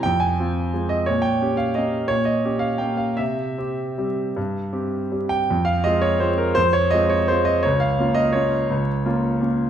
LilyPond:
\new Staff \with { instrumentName = "Grand piano" } { \time 3/4 \key f \minor \tempo 4 = 169 << { g''8 aes''2 ees''8 | des''8 g''4 f''8 ees''4 | des''8 ees''4 f''8 g''8 f''8 | e''2.~ |
e''2 r8 g''8~ | g''8 f''8 ees''8 des''8 c''8 bes'8 | c''8 des''8 ees''8 des''8 c''8 ees''8 | des''8 f''4 ees''8 des''4~ |
des''2 r4 | } \\ { f,4 <c' f'>4 <aes c' f'>4 | bes,4 <des' g'>4 <bes des' g'>4 | bes,4 <des' g'>4 <bes des' g'>4 | c4 <c' g'>4 <g c' g'>4 |
g,4 <c' g'>4 <g c' g'>4 | f,4 <aes c' f'>4 <aes c' f'>4 | f,4 <aes c' f'>4 <aes c' f'>4 | des,4 <bes des' f'>4 <bes des' f'>4 |
des,4 <bes des' f'>4 <bes des' f'>4 | } >> }